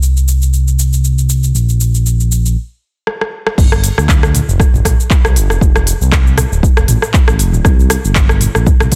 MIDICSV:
0, 0, Header, 1, 3, 480
1, 0, Start_track
1, 0, Key_signature, -2, "minor"
1, 0, Tempo, 508475
1, 1460, Time_signature, 4, 2, 24, 8
1, 8454, End_track
2, 0, Start_track
2, 0, Title_t, "Analog synth bass"
2, 0, Program_c, 0, 38
2, 0, Note_on_c, 0, 36, 84
2, 1441, Note_off_c, 0, 36, 0
2, 1459, Note_on_c, 0, 34, 85
2, 2420, Note_off_c, 0, 34, 0
2, 3381, Note_on_c, 0, 31, 101
2, 3675, Note_off_c, 0, 31, 0
2, 3754, Note_on_c, 0, 38, 90
2, 4155, Note_off_c, 0, 38, 0
2, 4231, Note_on_c, 0, 29, 84
2, 4375, Note_off_c, 0, 29, 0
2, 4471, Note_on_c, 0, 31, 92
2, 4540, Note_off_c, 0, 31, 0
2, 4578, Note_on_c, 0, 34, 81
2, 4663, Note_off_c, 0, 34, 0
2, 4953, Note_on_c, 0, 36, 80
2, 5062, Note_on_c, 0, 31, 78
2, 5076, Note_off_c, 0, 36, 0
2, 5195, Note_on_c, 0, 29, 93
2, 5209, Note_off_c, 0, 31, 0
2, 5262, Note_off_c, 0, 29, 0
2, 5302, Note_on_c, 0, 29, 100
2, 5595, Note_off_c, 0, 29, 0
2, 5671, Note_on_c, 0, 36, 89
2, 6074, Note_off_c, 0, 36, 0
2, 6153, Note_on_c, 0, 26, 82
2, 6296, Note_off_c, 0, 26, 0
2, 6394, Note_on_c, 0, 29, 91
2, 6461, Note_off_c, 0, 29, 0
2, 6505, Note_on_c, 0, 33, 80
2, 6586, Note_off_c, 0, 33, 0
2, 6875, Note_on_c, 0, 33, 77
2, 6986, Note_on_c, 0, 29, 80
2, 7000, Note_off_c, 0, 33, 0
2, 7120, Note_on_c, 0, 26, 94
2, 7134, Note_off_c, 0, 29, 0
2, 7184, Note_off_c, 0, 26, 0
2, 7223, Note_on_c, 0, 36, 98
2, 7516, Note_off_c, 0, 36, 0
2, 7594, Note_on_c, 0, 31, 92
2, 7996, Note_off_c, 0, 31, 0
2, 8074, Note_on_c, 0, 34, 84
2, 8216, Note_off_c, 0, 34, 0
2, 8310, Note_on_c, 0, 36, 88
2, 8380, Note_off_c, 0, 36, 0
2, 8421, Note_on_c, 0, 39, 82
2, 8454, Note_off_c, 0, 39, 0
2, 8454, End_track
3, 0, Start_track
3, 0, Title_t, "Drums"
3, 26, Note_on_c, 9, 82, 49
3, 120, Note_off_c, 9, 82, 0
3, 160, Note_on_c, 9, 82, 25
3, 254, Note_off_c, 9, 82, 0
3, 267, Note_on_c, 9, 82, 87
3, 361, Note_off_c, 9, 82, 0
3, 398, Note_on_c, 9, 82, 37
3, 492, Note_off_c, 9, 82, 0
3, 505, Note_on_c, 9, 82, 50
3, 600, Note_off_c, 9, 82, 0
3, 640, Note_on_c, 9, 82, 25
3, 734, Note_off_c, 9, 82, 0
3, 748, Note_on_c, 9, 82, 88
3, 842, Note_off_c, 9, 82, 0
3, 879, Note_on_c, 9, 82, 39
3, 973, Note_off_c, 9, 82, 0
3, 987, Note_on_c, 9, 82, 51
3, 1081, Note_off_c, 9, 82, 0
3, 1117, Note_on_c, 9, 82, 26
3, 1212, Note_off_c, 9, 82, 0
3, 1224, Note_on_c, 9, 82, 93
3, 1318, Note_off_c, 9, 82, 0
3, 1354, Note_on_c, 9, 82, 39
3, 1449, Note_off_c, 9, 82, 0
3, 1465, Note_on_c, 9, 82, 50
3, 1559, Note_off_c, 9, 82, 0
3, 1596, Note_on_c, 9, 82, 26
3, 1690, Note_off_c, 9, 82, 0
3, 1705, Note_on_c, 9, 82, 89
3, 1800, Note_off_c, 9, 82, 0
3, 1837, Note_on_c, 9, 82, 38
3, 1932, Note_off_c, 9, 82, 0
3, 1948, Note_on_c, 9, 82, 50
3, 2042, Note_off_c, 9, 82, 0
3, 2079, Note_on_c, 9, 82, 25
3, 2174, Note_off_c, 9, 82, 0
3, 2188, Note_on_c, 9, 82, 85
3, 2283, Note_off_c, 9, 82, 0
3, 2320, Note_on_c, 9, 82, 36
3, 2414, Note_off_c, 9, 82, 0
3, 2899, Note_on_c, 9, 37, 57
3, 2993, Note_off_c, 9, 37, 0
3, 3034, Note_on_c, 9, 37, 61
3, 3128, Note_off_c, 9, 37, 0
3, 3271, Note_on_c, 9, 37, 82
3, 3366, Note_off_c, 9, 37, 0
3, 3379, Note_on_c, 9, 36, 113
3, 3384, Note_on_c, 9, 49, 103
3, 3390, Note_on_c, 9, 82, 51
3, 3474, Note_off_c, 9, 36, 0
3, 3478, Note_off_c, 9, 49, 0
3, 3485, Note_off_c, 9, 82, 0
3, 3513, Note_on_c, 9, 37, 98
3, 3519, Note_on_c, 9, 82, 27
3, 3607, Note_off_c, 9, 37, 0
3, 3614, Note_off_c, 9, 82, 0
3, 3621, Note_on_c, 9, 46, 96
3, 3628, Note_on_c, 9, 82, 94
3, 3715, Note_off_c, 9, 46, 0
3, 3722, Note_off_c, 9, 82, 0
3, 3756, Note_on_c, 9, 37, 82
3, 3763, Note_on_c, 9, 82, 39
3, 3851, Note_off_c, 9, 37, 0
3, 3857, Note_off_c, 9, 82, 0
3, 3860, Note_on_c, 9, 36, 115
3, 3861, Note_on_c, 9, 39, 104
3, 3868, Note_on_c, 9, 82, 54
3, 3954, Note_off_c, 9, 36, 0
3, 3956, Note_off_c, 9, 39, 0
3, 3963, Note_off_c, 9, 82, 0
3, 3994, Note_on_c, 9, 37, 99
3, 4001, Note_on_c, 9, 82, 27
3, 4089, Note_off_c, 9, 37, 0
3, 4096, Note_off_c, 9, 82, 0
3, 4103, Note_on_c, 9, 45, 75
3, 4103, Note_on_c, 9, 46, 91
3, 4110, Note_on_c, 9, 82, 94
3, 4197, Note_off_c, 9, 45, 0
3, 4197, Note_off_c, 9, 46, 0
3, 4204, Note_off_c, 9, 82, 0
3, 4239, Note_on_c, 9, 82, 40
3, 4334, Note_off_c, 9, 82, 0
3, 4339, Note_on_c, 9, 36, 120
3, 4342, Note_on_c, 9, 37, 80
3, 4349, Note_on_c, 9, 82, 51
3, 4434, Note_off_c, 9, 36, 0
3, 4436, Note_off_c, 9, 37, 0
3, 4443, Note_off_c, 9, 82, 0
3, 4474, Note_on_c, 9, 45, 81
3, 4481, Note_on_c, 9, 82, 28
3, 4569, Note_off_c, 9, 45, 0
3, 4575, Note_off_c, 9, 82, 0
3, 4579, Note_on_c, 9, 36, 62
3, 4582, Note_on_c, 9, 37, 95
3, 4582, Note_on_c, 9, 46, 94
3, 4588, Note_on_c, 9, 82, 94
3, 4673, Note_off_c, 9, 36, 0
3, 4676, Note_off_c, 9, 37, 0
3, 4676, Note_off_c, 9, 46, 0
3, 4683, Note_off_c, 9, 82, 0
3, 4721, Note_on_c, 9, 82, 40
3, 4815, Note_off_c, 9, 82, 0
3, 4819, Note_on_c, 9, 36, 117
3, 4820, Note_on_c, 9, 39, 101
3, 4827, Note_on_c, 9, 82, 52
3, 4913, Note_off_c, 9, 36, 0
3, 4914, Note_off_c, 9, 39, 0
3, 4921, Note_off_c, 9, 82, 0
3, 4954, Note_on_c, 9, 37, 98
3, 4960, Note_on_c, 9, 82, 28
3, 5048, Note_off_c, 9, 37, 0
3, 5055, Note_off_c, 9, 82, 0
3, 5062, Note_on_c, 9, 46, 96
3, 5069, Note_on_c, 9, 82, 96
3, 5157, Note_off_c, 9, 46, 0
3, 5163, Note_off_c, 9, 82, 0
3, 5193, Note_on_c, 9, 37, 85
3, 5200, Note_on_c, 9, 82, 41
3, 5287, Note_off_c, 9, 37, 0
3, 5294, Note_off_c, 9, 82, 0
3, 5299, Note_on_c, 9, 36, 117
3, 5308, Note_on_c, 9, 82, 53
3, 5394, Note_off_c, 9, 36, 0
3, 5403, Note_off_c, 9, 82, 0
3, 5433, Note_on_c, 9, 37, 97
3, 5440, Note_on_c, 9, 82, 27
3, 5528, Note_off_c, 9, 37, 0
3, 5535, Note_off_c, 9, 82, 0
3, 5540, Note_on_c, 9, 46, 94
3, 5547, Note_on_c, 9, 82, 99
3, 5635, Note_off_c, 9, 46, 0
3, 5641, Note_off_c, 9, 82, 0
3, 5679, Note_on_c, 9, 82, 41
3, 5773, Note_off_c, 9, 82, 0
3, 5780, Note_on_c, 9, 36, 118
3, 5781, Note_on_c, 9, 37, 85
3, 5781, Note_on_c, 9, 39, 98
3, 5787, Note_on_c, 9, 82, 55
3, 5874, Note_off_c, 9, 36, 0
3, 5875, Note_off_c, 9, 37, 0
3, 5875, Note_off_c, 9, 39, 0
3, 5882, Note_off_c, 9, 82, 0
3, 5920, Note_on_c, 9, 82, 28
3, 6014, Note_off_c, 9, 82, 0
3, 6019, Note_on_c, 9, 37, 96
3, 6019, Note_on_c, 9, 45, 76
3, 6019, Note_on_c, 9, 46, 87
3, 6026, Note_on_c, 9, 82, 98
3, 6113, Note_off_c, 9, 37, 0
3, 6113, Note_off_c, 9, 45, 0
3, 6113, Note_off_c, 9, 46, 0
3, 6120, Note_off_c, 9, 82, 0
3, 6160, Note_on_c, 9, 82, 40
3, 6254, Note_off_c, 9, 82, 0
3, 6260, Note_on_c, 9, 36, 124
3, 6268, Note_on_c, 9, 82, 53
3, 6354, Note_off_c, 9, 36, 0
3, 6362, Note_off_c, 9, 82, 0
3, 6391, Note_on_c, 9, 37, 101
3, 6397, Note_on_c, 9, 82, 27
3, 6485, Note_off_c, 9, 37, 0
3, 6492, Note_off_c, 9, 82, 0
3, 6496, Note_on_c, 9, 45, 92
3, 6496, Note_on_c, 9, 46, 89
3, 6503, Note_on_c, 9, 82, 99
3, 6591, Note_off_c, 9, 45, 0
3, 6591, Note_off_c, 9, 46, 0
3, 6597, Note_off_c, 9, 82, 0
3, 6630, Note_on_c, 9, 37, 86
3, 6637, Note_on_c, 9, 82, 42
3, 6724, Note_off_c, 9, 37, 0
3, 6731, Note_off_c, 9, 82, 0
3, 6737, Note_on_c, 9, 39, 97
3, 6740, Note_on_c, 9, 36, 121
3, 6744, Note_on_c, 9, 82, 53
3, 6831, Note_off_c, 9, 39, 0
3, 6834, Note_off_c, 9, 36, 0
3, 6838, Note_off_c, 9, 82, 0
3, 6869, Note_on_c, 9, 37, 98
3, 6876, Note_on_c, 9, 82, 28
3, 6964, Note_off_c, 9, 37, 0
3, 6970, Note_off_c, 9, 82, 0
3, 6979, Note_on_c, 9, 46, 90
3, 6985, Note_on_c, 9, 82, 97
3, 7073, Note_off_c, 9, 46, 0
3, 7080, Note_off_c, 9, 82, 0
3, 7110, Note_on_c, 9, 45, 77
3, 7117, Note_on_c, 9, 82, 41
3, 7205, Note_off_c, 9, 45, 0
3, 7212, Note_off_c, 9, 82, 0
3, 7218, Note_on_c, 9, 37, 79
3, 7220, Note_on_c, 9, 36, 117
3, 7225, Note_on_c, 9, 82, 54
3, 7313, Note_off_c, 9, 37, 0
3, 7315, Note_off_c, 9, 36, 0
3, 7320, Note_off_c, 9, 82, 0
3, 7359, Note_on_c, 9, 82, 27
3, 7454, Note_off_c, 9, 82, 0
3, 7457, Note_on_c, 9, 37, 97
3, 7457, Note_on_c, 9, 46, 88
3, 7464, Note_on_c, 9, 82, 103
3, 7552, Note_off_c, 9, 37, 0
3, 7552, Note_off_c, 9, 46, 0
3, 7559, Note_off_c, 9, 82, 0
3, 7597, Note_on_c, 9, 82, 40
3, 7691, Note_off_c, 9, 82, 0
3, 7696, Note_on_c, 9, 39, 99
3, 7700, Note_on_c, 9, 36, 122
3, 7703, Note_on_c, 9, 82, 54
3, 7790, Note_off_c, 9, 39, 0
3, 7794, Note_off_c, 9, 36, 0
3, 7797, Note_off_c, 9, 82, 0
3, 7828, Note_on_c, 9, 37, 92
3, 7835, Note_on_c, 9, 82, 28
3, 7923, Note_off_c, 9, 37, 0
3, 7929, Note_off_c, 9, 82, 0
3, 7937, Note_on_c, 9, 45, 76
3, 7937, Note_on_c, 9, 46, 89
3, 7944, Note_on_c, 9, 82, 96
3, 8031, Note_off_c, 9, 45, 0
3, 8031, Note_off_c, 9, 46, 0
3, 8038, Note_off_c, 9, 82, 0
3, 8071, Note_on_c, 9, 37, 80
3, 8077, Note_on_c, 9, 82, 42
3, 8165, Note_off_c, 9, 37, 0
3, 8172, Note_off_c, 9, 82, 0
3, 8180, Note_on_c, 9, 36, 124
3, 8183, Note_on_c, 9, 82, 52
3, 8275, Note_off_c, 9, 36, 0
3, 8278, Note_off_c, 9, 82, 0
3, 8311, Note_on_c, 9, 37, 101
3, 8311, Note_on_c, 9, 45, 79
3, 8318, Note_on_c, 9, 82, 29
3, 8405, Note_off_c, 9, 37, 0
3, 8405, Note_off_c, 9, 45, 0
3, 8412, Note_off_c, 9, 82, 0
3, 8417, Note_on_c, 9, 46, 90
3, 8420, Note_on_c, 9, 36, 66
3, 8424, Note_on_c, 9, 82, 98
3, 8454, Note_off_c, 9, 36, 0
3, 8454, Note_off_c, 9, 46, 0
3, 8454, Note_off_c, 9, 82, 0
3, 8454, End_track
0, 0, End_of_file